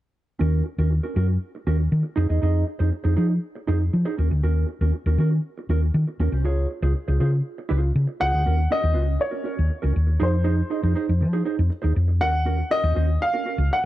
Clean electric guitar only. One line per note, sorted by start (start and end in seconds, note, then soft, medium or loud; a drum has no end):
0.39 0.63 C#4 medium
0.39 0.63 F#4 medium
0.39 0.64 A#4 medium
0.66 muted clean electric guitar stroke soft
0.79 0.90 C#4 soft
0.79 0.90 F#4 soft
0.79 0.90 A#4 medium
0.92 muted clean electric guitar stroke soft
1.03 1.15 C#4 soft
1.03 1.15 F#4 soft
1.03 1.15 A#4 medium
1.16 1.30 C#4 medium
1.16 1.29 F#4 medium
1.16 1.28 A#4 medium
1.29 muted clean electric guitar stroke soft
1.55 muted clean electric guitar stroke soft
1.67 1.81 C#4 medium
1.67 1.79 F#4 medium
1.67 1.78 A#4 medium
1.79 muted clean electric guitar stroke soft
1.91 muted clean electric guitar stroke soft
2.03 muted clean electric guitar stroke soft
2.16 2.28 D#4 medium
2.16 2.28 G#4 medium
2.16 2.29 C5 medium
2.29 2.41 D#4 soft
2.29 2.41 G#4 medium
2.29 2.41 D#5 medium
2.42 2.65 D#4 medium
2.42 2.65 G#4 medium
2.42 2.66 D#5 medium
2.67 muted clean electric guitar stroke soft
2.79 2.91 D#4 medium
2.79 2.91 G#4 medium
2.79 2.91 C5 medium
2.92 muted clean electric guitar stroke soft
3.04 3.15 D#4 soft
3.04 3.16 G#4 medium
3.04 3.16 C5 medium
3.16 3.31 D#4 medium
3.16 3.28 G#4 medium
3.16 3.27 C5 medium
3.29 muted clean electric guitar stroke soft
3.55 muted clean electric guitar stroke soft
3.67 3.82 D#4 medium
3.67 3.80 G#4 medium
3.67 3.79 C5 medium
3.80 muted clean electric guitar stroke soft
3.93 muted clean electric guitar stroke soft
4.05 4.17 D#4 medium
4.05 4.18 G#4 medium
4.05 4.18 C5 medium
4.18 4.29 C#4 medium
4.18 4.29 F#4 medium
4.18 4.29 A#4 medium
4.30 muted clean electric guitar stroke soft
4.43 4.66 C#4 medium
4.43 4.66 F#4 medium
4.43 4.67 A#4 medium
4.68 muted clean electric guitar stroke soft
4.81 4.93 C#4 medium
4.81 4.93 F#4 soft
4.81 4.92 A#4 medium
4.94 muted clean electric guitar stroke soft
5.07 5.18 C#4 medium
5.07 5.18 F#4 medium
5.07 5.18 A#4 medium
5.20 5.34 C#4 medium
5.20 5.31 F#4 medium
5.20 5.30 A#4 medium
5.32 muted clean electric guitar stroke soft
5.58 muted clean electric guitar stroke soft
5.70 5.84 C#4 medium
5.70 5.83 F#4 medium
5.70 5.82 A#4 medium
5.83 muted clean electric guitar stroke soft
5.95 muted clean electric guitar stroke soft
6.08 muted clean electric guitar stroke soft
6.20 6.33 C#4 medium
6.20 6.32 F#4 medium
6.20 6.33 A#4 medium
6.33 6.44 C#4 medium
6.33 6.44 F#4 medium
6.33 6.44 C5 medium
6.44 6.67 F4 medium
6.44 6.68 G#4 medium
6.44 6.68 C#5 medium
6.70 muted clean electric guitar stroke soft
6.82 6.94 F4 medium
6.82 6.94 G#4 medium
6.82 6.94 C5 medium
6.95 muted clean electric guitar stroke soft
7.08 7.19 F4 soft
7.08 7.19 G#4 soft
7.08 7.19 C5 medium
7.20 7.34 F4 medium
7.20 7.32 G#4 medium
7.20 7.31 C5 loud
7.32 muted clean electric guitar stroke soft
7.58 muted clean electric guitar stroke soft
7.69 7.89 F4 medium
7.69 7.82 G#4 medium
7.69 7.82 C5 loud
7.83 muted clean electric guitar stroke soft
7.96 muted clean electric guitar stroke soft
8.07 muted clean electric guitar stroke soft
8.20 8.34 F4 medium
8.20 8.33 G#4 medium
8.20 8.33 C5 medium
8.34 8.45 F4 soft
8.34 8.45 G#4 medium
8.34 8.45 C5 medium
8.46 8.60 C#4 medium
8.46 8.58 F#4 medium
8.46 8.57 A#4 medium
8.58 muted clean electric guitar stroke soft
8.71 8.82 C#4 medium
8.71 8.81 F#4 medium
8.71 8.81 A#4 medium
8.82 8.92 C#4 soft
8.82 8.93 F#4 medium
8.82 8.93 C5 medium
8.93 9.14 C#4 medium
8.93 9.05 F#4 medium
8.93 9.05 C5 medium
9.06 muted clean electric guitar stroke soft
9.19 muted clean electric guitar stroke soft
9.31 9.43 C#4 soft
9.31 9.43 F#4 medium
9.31 9.44 A#4 medium
9.44 9.59 C#4 medium
9.44 9.57 F#4 medium
9.44 9.56 A#4 medium
9.57 muted clean electric guitar stroke soft
9.69 muted clean electric guitar stroke soft
9.82 9.94 C#4 medium
9.82 9.94 F#4 medium
9.82 9.94 A#4 medium
9.95 muted clean electric guitar stroke soft
10.07 muted clean electric guitar stroke soft
10.20 10.35 D#4 medium
10.20 10.33 G#4 medium
10.20 10.32 C5 medium
10.33 muted clean electric guitar stroke medium
10.44 10.59 D#4 medium
10.44 10.57 G#4 medium
10.44 10.56 C5 medium
10.58 muted clean electric guitar stroke soft
10.70 10.82 D#4 medium
10.70 10.82 G#4 medium
10.70 10.82 D#5 medium
10.82 10.94 D#4 medium
10.82 10.95 G#4 medium
10.82 10.94 C5 medium
10.95 11.10 D#4 medium
10.95 11.08 G#4 medium
10.95 11.07 C5 medium
11.08 muted clean electric guitar stroke soft
11.21 muted clean electric guitar stroke soft
11.33 11.44 D#4 soft
11.33 11.44 G#4 medium
11.33 11.44 C5 medium
11.45 11.60 D#4 medium
11.45 11.57 G#4 medium
11.45 11.57 C5 medium
11.58 muted clean electric guitar stroke soft
11.70 muted clean electric guitar stroke soft
11.82 11.94 D#4 medium
11.82 11.94 G#4 medium
11.82 11.94 C5 medium
11.95 muted clean electric guitar stroke soft
12.08 muted clean electric guitar stroke soft
12.21 12.35 C#4 medium
12.21 12.33 F#4 medium
12.21 12.32 A#4 medium
12.33 muted clean electric guitar stroke soft
12.45 12.60 C#4 medium
12.45 12.58 F#4 medium
12.45 12.58 A#4 medium
12.59 muted clean electric guitar stroke medium
12.71 12.82 C#4 medium
12.71 12.82 F#4 medium
12.71 12.82 A#4 medium
12.84 12.94 C#4 medium
12.84 12.95 F#4 medium
12.84 12.95 C5 medium
12.95 13.10 C#4 medium
12.95 13.08 F#4 medium
12.95 13.08 C5 loud
13.09 muted clean electric guitar stroke soft
13.21 muted clean electric guitar stroke soft
13.33 13.44 C#4 medium
13.33 13.45 F#4 medium
13.33 13.45 A#4 medium
13.46 13.60 C#4 medium
13.46 13.58 F#4 medium
13.46 13.58 A#4 medium
13.59 muted clean electric guitar stroke soft
13.71 muted clean electric guitar stroke soft